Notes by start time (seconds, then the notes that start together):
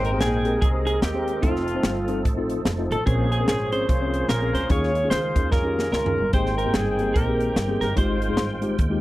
Already playing: G#1 G#2 G#3 A#3 C4 D#4 A#4 C5 G5
0.05 A#4, closed hi-hat
0.12 C4 G4 G#4 C5
0.20 A#1 C4 D#4 G#4, snare, closed hi-hat
0.44 C4 G4 G#4 A#4, closed hi-hat
0.61 C2 C4 D#4 G#4, kick, closed hi-hat
0.73 C4 G4 G#4 C5
0.87 G#4, closed hi-hat
1.02 D#2 A#3 C4 G4, snare, closed hi-hat
1.14 C4 G4 G#4 C5
1.28 closed hi-hat
1.41 F1 F3 A3 C4 D#4 F4 A4, kick, closed hi-hat
1.56 snare
1.68 closed hi-hat
1.75 C4 D#4 F4 C5
1.83 G1, snare, closed hi-hat
2.08 C4 D#4 F4 A4, closed hi-hat
2.25 A1, kick, closed hi-hat
2.37 C4 D#4 F4 A4
2.50 closed hi-hat
2.65 F1, snare, closed hi-hat
2.78 C4 D#4 F4 C5
2.91 A1 A4, closed hi-hat
3.06 A#1 A#2 A#3 C4 C#4 G#4 A#4 C5, kick, closed hi-hat
3.32 G#4, closed hi-hat
3.40 C4 C#4 G#4 A#4
3.47 G#1 C4 C#4 G#4, snare, closed hi-hat
3.72 C4 C#4 G#4 C5 C#5, closed hi-hat
3.87 C2 F4 G#4 C5, kick, closed hi-hat
4.01 C4 C#4 G#4 C#5
4.14 closed hi-hat
4.28 A#1 C#4 F4 A#4, snare, closed hi-hat
4.41 C4 C#4 G#4 A#4
4.53 D2 C5, snare, closed hi-hat
4.69 D#2 D#3 G#3 C#4 D#4 F4 G#4 C#5, kick, closed hi-hat
4.83 snare
4.95 closed hi-hat
5.03 C#4 D#4 F4 G#4
5.10 C#2 F4 G#4 C5, snare, closed hi-hat
5.35 D#2 C#4 D#4 F4 G#4, kick, closed hi-hat
5.52 F2 C#4 F4 A#4, kick, snare
5.64 C#4 D#4 F4 G4
5.79 snare
5.92 C#2 C#4 F4 A#4, snare
6.05 C#4 D#4 F4 G#4, floor tom
6.18 G1
6.33 G#1 G#2 A#3 C4 D#4 G4 G#4 C5 G5, kick, closed hi-hat
6.46 snare
6.58 A#4, closed hi-hat
6.65 A#3 C4 G4 G#4
6.74 G1 C4 D#4 G#4, snare, closed hi-hat
6.99 A#3 C4 G4 A#4, closed hi-hat
7.14 A#1 D#4 G4 A#4, kick, closed hi-hat
7.27 A#3 C4 G4 G#4
7.40 closed hi-hat
7.56 G1, snare, closed hi-hat
7.68 A#3 C4 G4 G#4
7.80 G1 A#4, snare, closed hi-hat
7.96 G#1 G#2 D#3 G#3 D#4 F4 G4 C5, kick, closed hi-hat
8.22 closed hi-hat
8.29 G#3 D#4 F4 G#4
8.37 G1, snare, closed hi-hat
8.62 G#3 D#4 F4 G4, closed hi-hat
8.79 D#2, kick, closed hi-hat
8.89 G#3 D#4 F4 G4